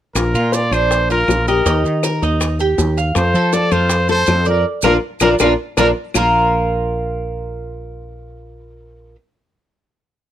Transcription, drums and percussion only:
0.15 high bongo medium
0.15 claves medium
0.15 maracas medium
0.35 maracas soft
0.52 high bongo medium
0.52 maracas medium
0.72 high bongo soft
0.72 claves medium
0.72 maracas soft
0.91 high bongo medium
0.91 maracas medium
1.10 high bongo soft
1.10 maracas soft
1.28 high bongo soft
1.28 low bongo medium
1.28 claves medium
1.28 maracas medium
1.48 high bongo soft
1.48 maracas soft
1.66 high bongo medium
1.66 maracas medium
1.86 maracas soft
2.03 high bongo medium
2.03 claves medium
2.03 maracas medium
2.22 high bongo soft
2.22 maracas soft
2.41 high bongo medium
2.41 claves medium
2.41 maracas medium
2.59 high bongo soft
2.59 maracas soft
2.78 high bongo soft
2.78 low bongo medium
2.78 maracas medium
2.97 high bongo soft
2.97 maracas soft
3.15 high bongo medium
3.15 claves medium
3.15 maracas medium
3.35 maracas soft
3.53 high bongo medium
3.53 maracas medium
3.72 high bongo soft
3.72 claves medium
3.72 maracas soft
3.90 high bongo medium
3.90 maracas medium
4.09 high bongo soft
4.09 maracas soft
4.27 high bongo soft
4.27 low bongo medium
4.27 claves medium
4.27 maracas medium
4.45 high bongo soft
4.45 maracas soft
4.82 high bongo medium
4.82 claves medium
4.82 maracas medium
5.20 high bongo loud
5.20 claves loud
5.20 maracas medium
5.39 high bongo medium
5.39 claves medium
5.39 maracas loud
5.77 high bongo medium
5.77 claves medium
5.77 maracas medium
6.14 low bongo medium
6.14 claves loud
6.14 maracas medium

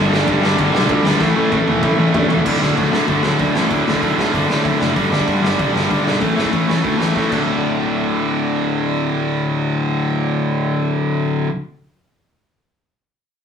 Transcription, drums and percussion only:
0.13 snare loud
0.28 kick loud
0.28 ride medium
0.43 snare loud
0.58 kick loud
0.58 ride medium
0.75 snare loud
0.89 kick loud
0.89 ride medium
1.05 snare loud
1.21 kick loud
1.21 snare medium
1.52 kick loud
1.52 high tom medium
1.68 high tom medium
1.83 kick loud
1.83 mid tom loud
2.14 kick loud
2.14 floor tom loud
2.30 floor tom loud
2.46 kick loud
2.46 crash loud
2.62 snare loud
2.69 kick medium
2.77 kick medium
2.77 open hi-hat soft
2.93 snare loud
3.08 kick loud
3.08 open hi-hat soft
3.23 snare loud
3.39 kick loud
3.39 open hi-hat soft
3.55 snare loud
3.70 kick loud
3.70 open hi-hat medium
3.88 snare loud
3.95 kick medium
4.03 kick medium
4.03 open hi-hat medium
4.19 snare loud
4.34 kick loud
4.34 open hi-hat medium
4.50 snare loud
4.65 kick loud
4.65 open hi-hat medium
4.81 snare loud
4.96 kick loud
4.96 open hi-hat medium
5.13 snare loud
5.20 kick medium
5.28 kick medium
5.28 open hi-hat soft
5.45 snare loud
5.59 kick loud
5.59 open hi-hat soft
5.76 snare loud
5.91 kick medium
5.91 open hi-hat soft
6.07 snare loud
6.21 kick loud
6.21 open hi-hat medium
6.38 snare medium
6.45 kick medium
6.53 kick medium
6.53 open hi-hat soft
6.70 snare loud
6.85 kick loud
6.85 open hi-hat medium
7.01 snare loud
7.16 kick medium
7.16 snare medium
7.32 kick medium
7.32 crash medium

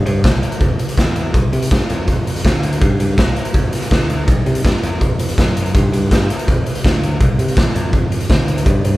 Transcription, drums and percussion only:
0.06 closed hi-hat medium
0.24 kick loud
0.24 snare loud
0.24 closed hi-hat medium
0.43 closed hi-hat soft
0.52 closed hi-hat medium
0.61 kick medium
0.61 closed hi-hat soft
0.79 closed hi-hat medium
0.89 closed hi-hat medium
0.97 kick medium
0.97 snare medium
0.97 closed hi-hat soft
1.16 closed hi-hat soft
1.34 kick medium
1.34 closed hi-hat soft
1.53 closed hi-hat soft
1.62 closed hi-hat medium
1.71 kick loud
1.71 snare loud
1.71 closed hi-hat medium
1.90 closed hi-hat medium
2.08 kick medium
2.08 closed hi-hat medium
2.27 closed hi-hat medium
2.36 closed hi-hat medium
2.45 kick medium
2.45 snare medium
2.45 closed hi-hat medium
2.63 closed hi-hat medium
2.73 closed hi-hat medium
2.82 kick loud
2.82 closed hi-hat medium
3.00 closed hi-hat medium
3.18 kick medium
3.18 snare loud
3.18 closed hi-hat medium
3.36 closed hi-hat soft
3.45 closed hi-hat medium
3.54 kick medium
3.54 closed hi-hat soft
3.73 snare soft
3.73 closed hi-hat medium
3.82 closed hi-hat medium
3.91 kick medium
3.91 snare medium
3.91 closed hi-hat soft
4.10 closed hi-hat medium
4.28 kick loud
4.28 closed hi-hat medium
4.46 closed hi-hat soft
4.55 closed hi-hat medium
4.65 kick medium
4.65 snare loud
4.65 closed hi-hat medium
4.83 closed hi-hat medium
5.01 kick medium
5.01 closed hi-hat soft
5.19 closed hi-hat medium
5.29 closed hi-hat medium
5.38 kick medium
5.38 snare medium
5.38 closed hi-hat medium
5.57 closed hi-hat medium
5.66 closed hi-hat medium
5.75 kick loud
5.75 closed hi-hat medium
5.93 closed hi-hat medium
6.11 kick medium
6.11 snare loud
6.11 closed hi-hat medium
6.30 closed hi-hat medium
6.39 closed hi-hat medium
6.48 kick medium
6.48 closed hi-hat medium
6.66 closed hi-hat medium
6.75 closed hi-hat soft
6.84 kick medium
6.84 snare loud
6.84 closed hi-hat soft
7.03 closed hi-hat soft
7.21 kick loud
7.21 closed hi-hat medium
7.39 closed hi-hat soft
7.48 closed hi-hat medium
7.57 kick loud
7.57 snare medium
7.57 closed hi-hat medium
7.75 closed hi-hat medium
7.93 kick medium
7.93 closed hi-hat soft
8.12 closed hi-hat medium
8.21 closed hi-hat medium
8.30 kick loud
8.30 snare medium
8.30 closed hi-hat medium
8.48 closed hi-hat medium
8.58 closed hi-hat medium
8.66 kick loud
8.66 closed hi-hat medium
8.85 closed hi-hat medium

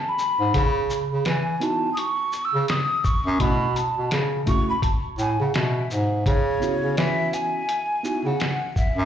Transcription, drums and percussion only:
0.19 shaker medium
0.54 kick loud
0.54 closed hi-hat medium
0.90 shaker medium
1.25 snare medium
1.25 closed hi-hat medium
1.61 closed hi-hat soft
1.61 shaker soft
1.97 closed hi-hat medium
2.32 shaker soft
2.68 snare loud
2.68 closed hi-hat medium
3.04 kick medium
3.04 shaker soft
3.40 kick loud
3.40 closed hi-hat loud
3.76 closed hi-hat soft
3.76 shaker medium
4.11 snare loud
4.11 closed hi-hat medium
4.47 kick loud
4.47 closed hi-hat soft
4.47 shaker soft
4.82 kick medium
4.82 closed hi-hat medium
5.18 shaker soft
5.54 snare loud
5.54 closed hi-hat medium
5.91 shaker soft
6.26 kick loud
6.26 closed hi-hat medium
6.62 shaker medium
6.97 snare loud
6.97 closed hi-hat medium
7.33 closed hi-hat soft
7.33 shaker soft
7.69 closed hi-hat medium
8.05 shaker soft
8.40 snare loud
8.40 closed hi-hat medium
8.76 kick medium
8.76 shaker soft

